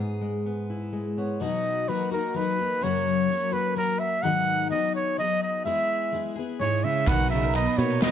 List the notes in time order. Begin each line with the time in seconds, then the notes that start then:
Already playing: G#2 B3
0.00 G#4
0.21 G#3
0.46 B3
0.70 E4
0.93 G#3
1.18 B3 C#5
1.40 B2 F#3 D#4 F#4 D#5
1.88 F#3 A#3 D#4 F#4 B4
2.11 A#3 D#4 F#4 A#4
2.34 F#3 A#3 D#4 F#4 B4
2.58 A#3 D#4 F#4
2.81 F#2 C#3 F#3 A#3 C#4 F#4 C#5
3.30 A#3 C#4 F#4
3.52 F#3 A#3 C#4 F#4 B4
3.75 F#3 A#3 C#4 F#4 A#4
3.99 E5
4.23 G#2 D#3 F#3 B3 D#4 G#4 F#5
4.71 F#3 B3 D#4 G#4 D#5
4.96 C#5
5.17 F#3 B3 D#4 G#4 D#5
5.42 D#5
5.65 G#3 B3 E4 G#4 E5
6.12 G#3 B3 E4 G#4
6.36 B3 E4 G#4
6.59 G#2 G#3 B3 E4 G#4 C#5
6.84 C#3 E5
7.07 B1 B2 D#3 F#3 B3 D#4 A#4 F#5, kick, clap, ride, shaker
7.20 D#4
7.30 C#3 B3 E5, clap
7.43 A#4
7.54 B2 F#3 B3 D#4 A#4 D#5, clap, ride, shaker
7.67 B4
7.78 A#2 B2 B3 D#4 A#4 C#5
7.90 D#4
8.02 B2 F#3 B3 D#4 A#4 D#5, snare, clap, ride, shaker